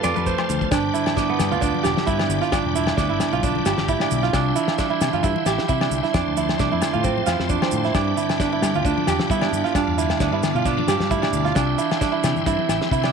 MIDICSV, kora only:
0, 0, Header, 1, 2, 480
1, 0, Start_track
1, 0, Tempo, 451807
1, 761, Time_signature, 4, 2, 24, 8
1, 13940, End_track
2, 0, Start_track
2, 0, Title_t, "Kora"
2, 0, Program_c, 0, 46
2, 0, Note_on_c, 0, 65, 83
2, 0, Note_on_c, 0, 67, 75
2, 0, Note_on_c, 0, 69, 77
2, 0, Note_on_c, 0, 71, 96
2, 36, Note_on_c, 0, 74, 110
2, 163, Note_off_c, 0, 71, 0
2, 168, Note_on_c, 0, 71, 76
2, 281, Note_on_c, 0, 72, 87
2, 345, Note_off_c, 0, 71, 0
2, 756, Note_on_c, 0, 62, 93
2, 915, Note_off_c, 0, 65, 0
2, 948, Note_off_c, 0, 67, 0
2, 995, Note_on_c, 0, 64, 67
2, 1198, Note_off_c, 0, 69, 0
2, 1213, Note_off_c, 0, 74, 0
2, 1234, Note_off_c, 0, 62, 0
2, 1238, Note_on_c, 0, 62, 83
2, 1377, Note_on_c, 0, 59, 75
2, 1441, Note_off_c, 0, 72, 0
2, 1609, Note_on_c, 0, 65, 73
2, 1673, Note_off_c, 0, 64, 0
2, 1708, Note_off_c, 0, 62, 0
2, 1712, Note_on_c, 0, 62, 84
2, 1946, Note_on_c, 0, 67, 87
2, 2194, Note_on_c, 0, 64, 92
2, 2258, Note_off_c, 0, 65, 0
2, 2318, Note_off_c, 0, 62, 0
2, 2323, Note_on_c, 0, 62, 76
2, 2564, Note_on_c, 0, 65, 75
2, 2628, Note_off_c, 0, 64, 0
2, 2677, Note_off_c, 0, 62, 0
2, 2681, Note_on_c, 0, 62, 94
2, 2925, Note_on_c, 0, 64, 74
2, 2989, Note_off_c, 0, 65, 0
2, 3153, Note_off_c, 0, 62, 0
2, 3158, Note_on_c, 0, 62, 94
2, 3283, Note_off_c, 0, 64, 0
2, 3287, Note_on_c, 0, 64, 72
2, 3357, Note_off_c, 0, 59, 0
2, 3447, Note_off_c, 0, 67, 0
2, 3534, Note_on_c, 0, 65, 73
2, 3598, Note_off_c, 0, 64, 0
2, 3648, Note_off_c, 0, 62, 0
2, 3652, Note_on_c, 0, 62, 84
2, 3887, Note_on_c, 0, 67, 85
2, 4131, Note_on_c, 0, 64, 92
2, 4195, Note_off_c, 0, 65, 0
2, 4259, Note_off_c, 0, 62, 0
2, 4263, Note_on_c, 0, 62, 75
2, 4492, Note_on_c, 0, 65, 80
2, 4556, Note_off_c, 0, 64, 0
2, 4600, Note_off_c, 0, 62, 0
2, 4604, Note_on_c, 0, 62, 104
2, 4839, Note_on_c, 0, 64, 81
2, 4903, Note_off_c, 0, 65, 0
2, 5078, Note_off_c, 0, 62, 0
2, 5082, Note_on_c, 0, 62, 85
2, 5202, Note_off_c, 0, 64, 0
2, 5207, Note_on_c, 0, 64, 80
2, 5387, Note_off_c, 0, 67, 0
2, 5453, Note_on_c, 0, 65, 77
2, 5517, Note_off_c, 0, 64, 0
2, 5555, Note_on_c, 0, 64, 91
2, 5619, Note_off_c, 0, 65, 0
2, 5801, Note_on_c, 0, 67, 87
2, 6039, Note_off_c, 0, 64, 0
2, 6043, Note_on_c, 0, 64, 87
2, 6169, Note_off_c, 0, 62, 0
2, 6173, Note_on_c, 0, 62, 73
2, 6404, Note_off_c, 0, 64, 0
2, 6408, Note_on_c, 0, 64, 70
2, 6519, Note_off_c, 0, 62, 0
2, 6523, Note_on_c, 0, 62, 101
2, 6765, Note_off_c, 0, 64, 0
2, 6770, Note_on_c, 0, 64, 73
2, 7006, Note_off_c, 0, 62, 0
2, 7010, Note_on_c, 0, 62, 88
2, 7135, Note_off_c, 0, 64, 0
2, 7139, Note_on_c, 0, 64, 75
2, 7302, Note_off_c, 0, 67, 0
2, 7364, Note_on_c, 0, 65, 74
2, 7428, Note_off_c, 0, 64, 0
2, 7479, Note_on_c, 0, 60, 80
2, 7710, Note_off_c, 0, 65, 0
2, 7714, Note_on_c, 0, 65, 86
2, 7956, Note_off_c, 0, 62, 0
2, 7960, Note_on_c, 0, 62, 86
2, 8090, Note_off_c, 0, 60, 0
2, 8094, Note_on_c, 0, 60, 74
2, 8335, Note_on_c, 0, 64, 72
2, 8399, Note_off_c, 0, 65, 0
2, 8438, Note_off_c, 0, 62, 0
2, 8442, Note_on_c, 0, 62, 94
2, 8675, Note_off_c, 0, 64, 0
2, 8680, Note_on_c, 0, 64, 70
2, 8920, Note_off_c, 0, 62, 0
2, 8924, Note_on_c, 0, 62, 89
2, 9052, Note_off_c, 0, 64, 0
2, 9056, Note_on_c, 0, 64, 74
2, 9300, Note_on_c, 0, 65, 73
2, 9364, Note_off_c, 0, 64, 0
2, 9398, Note_off_c, 0, 62, 0
2, 9402, Note_on_c, 0, 62, 88
2, 9640, Note_on_c, 0, 67, 89
2, 9886, Note_on_c, 0, 64, 85
2, 9950, Note_off_c, 0, 65, 0
2, 10005, Note_off_c, 0, 62, 0
2, 10007, Note_off_c, 0, 60, 0
2, 10009, Note_on_c, 0, 62, 74
2, 10241, Note_on_c, 0, 65, 74
2, 10305, Note_off_c, 0, 64, 0
2, 10354, Note_off_c, 0, 62, 0
2, 10359, Note_on_c, 0, 62, 92
2, 10600, Note_on_c, 0, 64, 75
2, 10664, Note_off_c, 0, 65, 0
2, 10841, Note_off_c, 0, 62, 0
2, 10845, Note_on_c, 0, 62, 84
2, 10970, Note_off_c, 0, 64, 0
2, 10974, Note_on_c, 0, 64, 75
2, 11141, Note_off_c, 0, 67, 0
2, 11215, Note_on_c, 0, 65, 72
2, 11279, Note_off_c, 0, 64, 0
2, 11318, Note_off_c, 0, 62, 0
2, 11322, Note_on_c, 0, 62, 91
2, 11562, Note_on_c, 0, 67, 91
2, 11800, Note_on_c, 0, 64, 89
2, 11863, Note_off_c, 0, 65, 0
2, 11921, Note_off_c, 0, 62, 0
2, 11925, Note_on_c, 0, 62, 81
2, 12159, Note_on_c, 0, 65, 84
2, 12223, Note_off_c, 0, 64, 0
2, 12268, Note_off_c, 0, 62, 0
2, 12272, Note_on_c, 0, 62, 100
2, 12515, Note_on_c, 0, 64, 78
2, 12579, Note_off_c, 0, 65, 0
2, 12754, Note_off_c, 0, 62, 0
2, 12758, Note_on_c, 0, 62, 90
2, 12874, Note_off_c, 0, 64, 0
2, 12878, Note_on_c, 0, 64, 78
2, 13062, Note_off_c, 0, 67, 0
2, 13239, Note_off_c, 0, 64, 0
2, 13243, Note_on_c, 0, 64, 88
2, 13720, Note_off_c, 0, 64, 0
2, 13725, Note_on_c, 0, 64, 80
2, 13852, Note_off_c, 0, 62, 0
2, 13856, Note_on_c, 0, 62, 78
2, 13940, Note_off_c, 0, 62, 0
2, 13940, Note_off_c, 0, 64, 0
2, 13940, End_track
0, 0, End_of_file